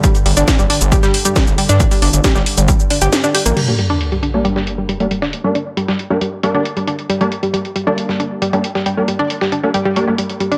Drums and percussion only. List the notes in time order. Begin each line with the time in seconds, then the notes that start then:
0.04 kick, closed hi-hat, shaker
0.15 closed hi-hat, shaker
0.26 closed hi-hat, open hi-hat
0.37 closed hi-hat, shaker
0.48 kick, snare, closed hi-hat, shaker
0.59 closed hi-hat, shaker
0.70 closed hi-hat, open hi-hat
0.81 closed hi-hat, shaker
0.92 kick, closed hi-hat, shaker
1.03 snare, shaker
1.14 closed hi-hat, open hi-hat
1.25 closed hi-hat, shaker
1.36 kick, snare, closed hi-hat, shaker
1.47 closed hi-hat, shaker
1.58 closed hi-hat, open hi-hat
1.69 snare, closed hi-hat, shaker
1.80 kick, closed hi-hat, shaker
1.91 open hi-hat, shaker
2.02 closed hi-hat, open hi-hat
2.13 closed hi-hat, shaker
2.24 kick, snare, closed hi-hat, shaker
2.35 snare, shaker
2.46 closed hi-hat, open hi-hat
2.58 closed hi-hat, shaker
2.68 kick, closed hi-hat, shaker
2.80 shaker
2.90 closed hi-hat, open hi-hat
3.02 closed hi-hat, shaker
3.13 snare, closed hi-hat, shaker
3.24 closed hi-hat, shaker
3.35 closed hi-hat, open hi-hat
3.46 closed hi-hat, shaker
3.57 closed hi-hat, crash
3.68 closed hi-hat
3.79 closed hi-hat
3.90 closed hi-hat
4.01 closed hi-hat
4.12 closed hi-hat
4.23 closed hi-hat
4.45 closed hi-hat
4.56 snare
4.67 closed hi-hat
4.89 closed hi-hat
5.00 closed hi-hat
5.11 closed hi-hat
5.22 snare
5.33 closed hi-hat
5.55 closed hi-hat
5.77 closed hi-hat
5.88 snare
5.99 closed hi-hat
6.21 closed hi-hat
6.43 closed hi-hat
6.65 closed hi-hat
6.77 closed hi-hat
6.87 closed hi-hat
6.99 closed hi-hat
7.10 closed hi-hat
7.21 closed hi-hat
7.32 closed hi-hat
7.43 closed hi-hat
7.54 closed hi-hat
7.65 closed hi-hat
7.76 closed hi-hat
7.98 closed hi-hat
8.09 snare
8.20 closed hi-hat
8.42 closed hi-hat
8.53 closed hi-hat
8.64 closed hi-hat
8.75 snare
8.86 closed hi-hat
9.08 closed hi-hat
9.30 closed hi-hat
9.41 snare
9.52 closed hi-hat
9.74 closed hi-hat
9.96 closed hi-hat
10.18 closed hi-hat
10.30 closed hi-hat
10.40 closed hi-hat
10.52 closed hi-hat